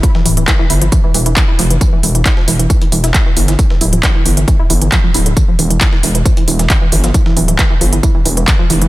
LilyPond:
<<
  \new Staff \with { instrumentName = "Synth arpeggio sound" } { \clef bass \time 4/4 \key e \phrygian \tempo 4 = 135 f16 e16 e16 e16 e16 e16 e'16 f16 e16 e16 e16 e16 e16 e'16 f16 e16 | e16 e16 e16 e16 e'16 f16 e16 e16 e16 e16 e16 e'16 f16 e16 e16 e16 | e16 e16 e'16 f16 e16 e16 e16 e16 e16 e'16 e16 e16 f16 f16 e'16 d16 | e16 f16 e16 e16 e16 e16 e16 e16 f16 e16 e16 e16 e16 e16 e16 f16 |
e16 e16 e16 e16 e16 e16 f16 e16 e16 e16 e16 e16 e16 f16 e16 e16 | }
  \new Staff \with { instrumentName = "Analog synth bass" } { \clef bass \time 4/4 \key e \phrygian r8 d,,8 r8 g,,8 r8 e,,8 r8 f,,8 | r8 e,,8 r8 e,,8 r8 e,,8 r8 g,,8 | r8 d,,8 r8 g,,8 r8 g,,8 r8 d,,8 | r8 e,,8 r8 e,,8 r8 e,,8 r8 g,,8 |
r8 d,,8 r8 g,,8 r8 e,,8 r8 f,,8 | }
  \new DrumStaff \with { instrumentName = "Drums" } \drummode { \time 4/4 <hh bd tamb>16 sn16 <hho tamb>16 hh16 <hc hh bd sn tamb>8 <hho tamb>16 hh16 <hh bd tamb>8 <hho tamb>16 hh16 <hc hh bd sn tamb>8 <hho tamb>16 hh16 | <hh bd tamb>8 <hho tamb>16 hh16 <hc hh bd sn tamb>16 sn16 <hho tamb>16 hh16 <hh bd tamb>16 hh16 <hho tamb>16 <hh sn>16 <hc hh bd sn tamb>8 <hho tamb>16 <hh sn>16 | <hh bd tamb>16 sn16 <hho tamb>16 hh16 <hc hh bd sn tamb>8 <hho tamb>16 hh16 <hh bd tamb>8 <hho tamb>16 hh16 <hc hh bd sn tamb>8 <hho tamb>16 hh16 | <hh bd tamb>8 <hho tamb>16 hh16 <hc hh bd sn tamb>16 sn16 <hho tamb>16 hh16 <hh bd tamb>16 hh16 <hho tamb>16 <hh sn>16 <hc hh bd sn tamb>8 <hho tamb>16 <hh sn>16 |
<hh bd tamb>16 sn16 <hho tamb>16 hh16 <hc hh bd sn tamb>8 <hho tamb>16 hh16 <hh bd tamb>8 <hho tamb>16 hh16 <hc hh bd sn tamb>8 <hho tamb>16 hh16 | }
>>